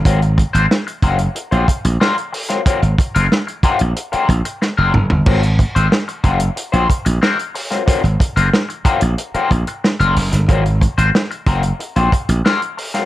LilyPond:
<<
  \new Staff \with { instrumentName = "Clean electric guitar" } { \time 4/4 \key aes \major \tempo 4 = 92 <ges c' f' bes'>16 r8 <ges c' f' c''>16 r8 <ges c' f' bes'>16 r8 <ges c' f' c''>16 r8 <ges c' f' bes'>16 r8 <ges c' f' bes'>16 | <ges c' f' bes'>16 r8 <ges c' f' bes'>16 r8 <ges c' f' bes'>16 r8 <ges c' f' bes'>16 r8. <ges c' f' bes'>16 r8 | <ges c' f' bes'>16 r8 <ges c' f' c''>16 r8 <ges c' f' bes'>16 r8 <ges c' f' c''>16 r8 <ges c' f' bes'>16 r8 <ges c' f' bes'>16 | <ges c' f' bes'>16 r8 <ges c' f' bes'>16 r8 <ges c' f' bes'>16 r8 <ges c' f' bes'>16 r8. <ges c' f' bes'>16 r8 |
<ges c' f' bes'>16 r8 <ges c' f' c''>16 r8 <ges c' f' bes'>16 r8 <ges c' f' c''>16 r8 <ges c' f' bes'>16 r8 <ges c' f' bes'>16 | }
  \new Staff \with { instrumentName = "Slap bass" } { \clef bass \time 4/4 \key aes \major aes,,8. aes,,16 r8 ges,,8 r16 bes,,16 r16 bes,,16 r4 | r16 aes,,16 r16 ges,,16 r8. bes,,16 r8 bes,,16 r8 ges,,16 ges,,16 g,,16 | aes,,8. aes,,16 r8 ges,,8 r16 bes,,16 r16 bes,,16 r4 | r16 aes,,16 r16 ges,,16 r8. bes,,16 r8 bes,,16 r8 ges,,16 ges,,16 g,,16 |
aes,,8. aes,,16 r8 ges,,8 r16 bes,,16 r16 bes,,16 r4 | }
  \new DrumStaff \with { instrumentName = "Drums" } \drummode { \time 4/4 <hh bd>16 hh16 <hh bd>16 hh16 sn16 hh16 <hh bd>16 hh16 hh16 hh16 <hh bd>16 hh16 sn16 hh16 hho16 <hh sn>16 | <hh bd>16 hh16 <hh bd>16 hh16 sn16 hh16 <hh bd>16 hh16 hh16 hh16 <hh bd>16 hh16 sn8 toml16 tomfh16 | <cymc bd>16 hh16 <hh bd>16 hh16 sn16 hh16 <hh bd>16 hh16 hh16 hh16 <hh bd>16 hh16 sn16 hh16 hho16 <hh sn>16 | <hh bd>16 hh16 <hh bd>16 hh16 sn16 hh16 <hh bd>16 hh16 hh16 hh16 <hh bd>16 hh16 sn16 hh16 hho16 <hh sn>16 |
<hh bd>16 hh16 <hh bd>16 hh16 sn16 hh16 <hh bd>16 hh16 hh16 hh16 <hh bd>16 hh16 sn16 hh16 hho16 <hh sn>16 | }
>>